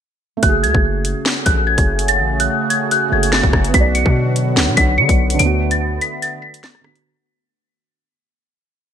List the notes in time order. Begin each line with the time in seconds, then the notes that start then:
0.37 A3
0.43 F#1 C#3 A3 F#4 G#4 F#6, kick, closed hi-hat
0.49 G#4
0.63 C#2 G#6, closed hi-hat
0.75 F#1, kick
1.05 closed hi-hat
1.26 snare
1.46 A1 F#6, kick, closed hi-hat
1.67 G#6
1.78 F#1, kick, closed hi-hat
1.99 closed hi-hat
2.08 A6, closed hi-hat
2.19 A1
2.40 F#6, closed hi-hat
2.70 G#6, closed hi-hat
2.91 F#6, closed hi-hat
3.09 F#1 A3 F#4 G#6
3.15 G#4
3.23 closed hi-hat
3.32 A6, snare
3.43 F#1, kick
3.53 F#1, kick, cross-stick
3.64 B3, closed hi-hat
3.74 B1 D3 F#3 B3 F#4 B6, kick, closed hi-hat
3.80 D5
3.95 C#7, closed hi-hat
4.06 B2, kick
4.36 closed hi-hat
4.57 C#2, snare
4.68 B2
4.77 B1 B6, kick, closed hi-hat
4.98 D3 C#7
5.09 B1, kick, closed hi-hat
5.30 closed hi-hat
5.34 D3
5.39 D2 A3 B3 D7, closed hi-hat
5.46 F#4
5.71 A6, closed hi-hat
6.01 B6, closed hi-hat
6.22 A6, closed hi-hat
6.42 B6
6.54 closed hi-hat
6.64 A6, snare
6.75 cross-stick
6.81 D3 B3 B6, cross-stick
6.87 F#4
6.96 closed hi-hat